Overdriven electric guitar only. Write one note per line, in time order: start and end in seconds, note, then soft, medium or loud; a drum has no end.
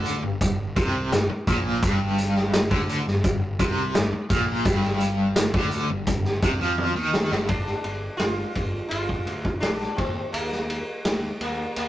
0.00 0.22 D3 loud
0.23 0.40 G2 medium
0.42 0.69 G2 medium
0.77 1.11 C3 medium
1.12 1.28 G2 medium
1.30 muted overdriven electric guitar stroke medium
1.48 1.82 A#2 loud
1.83 2.53 G2 loud
2.54 2.71 G2 medium
2.71 3.05 D3 loud
3.06 3.23 G2 medium
3.25 3.53 G2 medium
3.60 3.94 C3 medium
3.95 4.11 G2 medium
4.13 muted overdriven electric guitar stroke medium
4.30 4.65 A#2 loud
4.66 5.35 G2 loud
5.36 5.54 G2 medium
5.54 5.89 D3 loud
5.90 6.07 G2 medium
6.08 6.36 G2 medium
6.43 6.60 C3 medium
6.61 6.95 F3 medium
6.96 7.30 D#3 loud
7.32 7.48 G2 loud